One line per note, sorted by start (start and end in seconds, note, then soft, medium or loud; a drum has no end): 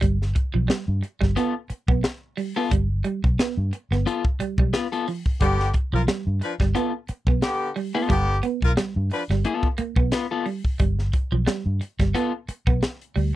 0.01 0.32 G1 loud
0.01 0.17 G3 medium
0.01 kick loud
0.01 closed hi-hat medium
0.22 snare soft
0.35 muted clean electric guitar stroke soft
0.35 kick loud
0.35 closed hi-hat medium
0.54 0.68 B1 medium
0.54 0.66 F3 medium
0.68 0.84 G3 medium
0.68 muted fingered electric bass stroke soft
0.68 snare loud
0.68 closed hi-hat medium
0.88 1.01 G2 medium
1.03 muted clean electric guitar stroke soft
1.03 closed hi-hat medium
1.21 1.35 G1 medium
1.21 1.33 G3 medium
1.21 kick medium
1.21 snare soft
1.36 1.52 B3 medium
1.36 1.53 B3 medium
1.36 1.53 F4 medium
1.36 1.54 A4 medium
1.36 closed hi-hat medium
1.70 muted clean electric guitar stroke soft
1.70 muted fingered electric bass stroke soft
1.70 closed hi-hat medium
1.88 2.02 B1 loud
1.88 2.01 B3 medium
1.88 kick loud
2.03 muted clean electric guitar stroke soft
2.03 snare loud
2.03 closed hi-hat medium
2.37 2.53 G3 medium
2.37 open hi-hat medium
2.56 2.68 B3 medium
2.56 2.70 B3 medium
2.56 2.70 F4 medium
2.56 2.70 A4 medium
2.71 3.01 G1 medium
2.71 2.87 G3 medium
2.71 kick loud
2.71 closed hi-hat medium
3.04 3.20 G3 medium
3.04 closed hi-hat medium
3.24 3.37 B1 medium
3.24 muted clean electric guitar stroke soft
3.24 kick loud
3.39 3.54 B3 medium
3.39 muted fingered electric bass stroke soft
3.39 snare loud
3.39 closed hi-hat medium
3.57 3.71 G2 medium
3.73 muted clean electric guitar stroke soft
3.73 closed hi-hat medium
3.91 4.04 G1 medium
3.91 4.04 B3 medium
3.91 snare soft
4.06 4.23 B3 medium
4.06 4.23 F4 medium
4.06 4.23 A4 medium
4.06 muted clean electric guitar stroke soft
4.06 closed hi-hat medium
4.25 kick medium
4.39 4.55 G3 medium
4.39 muted fingered electric bass stroke soft
4.39 closed hi-hat medium
4.58 4.71 B1 medium
4.58 4.71 G3 medium
4.58 kick loud
4.73 4.86 B3 medium
4.73 4.87 F4 medium
4.73 4.87 B4 medium
4.73 snare loud
4.73 closed hi-hat medium
4.92 5.06 B3 medium
4.92 5.06 F4 medium
4.92 5.05 A4 medium
4.92 closed hi-hat medium
5.08 5.23 F3 medium
5.08 open hi-hat medium
5.26 kick medium
5.40 5.71 G1 loud
5.40 5.68 D3 loud
5.40 5.57 G3 medium
5.40 5.68 B3 loud
5.40 5.68 G4 loud
5.40 kick loud
5.40 closed hi-hat medium
5.60 snare soft
5.74 muted clean electric guitar stroke soft
5.74 kick medium
5.74 closed hi-hat medium
5.93 6.06 B1 medium
5.93 6.05 F3 medium
5.93 6.03 F4 medium
5.93 6.03 A#4 medium
6.08 6.23 G3 medium
6.08 muted fingered electric bass stroke soft
6.08 snare loud
6.08 closed hi-hat medium
6.27 6.40 G2 medium
6.41 6.54 F3 medium
6.41 6.54 D4 medium
6.41 6.54 B4 medium
6.41 muted clean electric guitar stroke soft
6.41 closed hi-hat medium
6.60 6.73 G1 medium
6.60 6.73 G3 medium
6.60 kick medium
6.60 snare soft
6.75 6.90 B3 medium
6.75 6.92 B3 medium
6.75 6.92 F4 medium
6.75 6.92 A4 medium
6.75 closed hi-hat medium
7.08 muted clean electric guitar stroke soft
7.08 muted fingered electric bass stroke soft
7.08 closed hi-hat medium
7.27 7.40 B1 medium
7.27 7.40 B3 medium
7.27 kick loud
7.42 7.70 D3 medium
7.42 7.70 B3 loud
7.42 7.70 G4 loud
7.42 muted clean electric guitar stroke soft
7.42 snare loud
7.42 closed hi-hat medium
7.76 7.91 G3 medium
7.76 open hi-hat medium
7.95 8.07 B3 medium
7.95 8.14 B3 medium
7.95 8.13 F4 medium
7.95 8.13 A4 medium
8.09 8.40 G1 loud
8.09 8.37 D3 loud
8.09 8.25 G3 medium
8.09 8.37 B3 loud
8.09 8.37 G4 loud
8.09 kick loud
8.09 closed hi-hat loud
8.43 8.59 B3 medium
8.43 closed hi-hat medium
8.62 8.76 B1 medium
8.62 8.71 F4 medium
8.62 8.72 A#4 medium
8.62 muted clean electric guitar stroke soft
8.62 kick medium
8.77 8.93 G3 medium
8.77 snare loud
8.77 closed hi-hat medium
8.96 9.10 G2 loud
9.11 9.23 F3 medium
9.11 9.23 D4 medium
9.11 9.23 B4 medium
9.11 muted clean electric guitar stroke soft
9.11 open hi-hat medium
9.30 9.43 G1 medium
9.30 9.42 G3 medium
9.30 snare soft
9.45 9.67 B3 medium
9.45 9.67 F4 medium
9.45 9.67 A4 medium
9.45 muted clean electric guitar stroke soft
9.45 closed hi-hat medium
9.63 kick medium
9.78 9.94 A#3 medium
9.78 muted fingered electric bass stroke soft
9.78 closed hi-hat medium
9.96 10.10 B1 medium
9.96 10.09 B3 medium
9.96 kick loud
10.12 10.25 B3 medium
10.12 10.26 F4 medium
10.12 10.26 B4 medium
10.12 snare loud
10.12 closed hi-hat medium
10.31 10.45 B3 medium
10.31 10.45 F4 medium
10.31 10.44 A4 medium
10.46 10.61 G3 medium
10.46 open hi-hat medium
10.65 kick medium
10.79 11.10 G1 loud
10.79 10.95 G3 medium
10.79 kick loud
10.79 closed hi-hat loud
10.99 snare soft
11.13 muted clean electric guitar stroke soft
11.13 kick medium
11.13 closed hi-hat medium
11.32 11.45 B1 medium
11.32 11.44 F3 medium
11.46 11.62 G3 medium
11.46 muted fingered electric bass stroke soft
11.46 snare loud
11.46 closed hi-hat medium
11.66 11.79 G2 medium
11.81 muted clean electric guitar stroke soft
11.81 closed hi-hat medium
11.99 12.13 G1 medium
11.99 12.12 G3 medium
11.99 kick medium
11.99 snare soft
11.99 closed hi-hat soft
12.15 12.32 B3 medium
12.15 12.30 B3 medium
12.15 12.32 F4 medium
12.15 12.32 A4 loud
12.15 closed hi-hat medium
12.48 muted fingered electric bass stroke soft
12.48 muted clean electric guitar stroke soft
12.48 closed hi-hat medium
12.67 12.81 B1 loud
12.67 12.80 B3 medium
12.67 kick medium
12.82 muted clean electric guitar stroke soft
12.82 snare loud
12.82 closed hi-hat medium
13.01 closed hi-hat medium
13.16 13.35 D2 medium
13.16 13.31 G3 medium
13.16 open hi-hat medium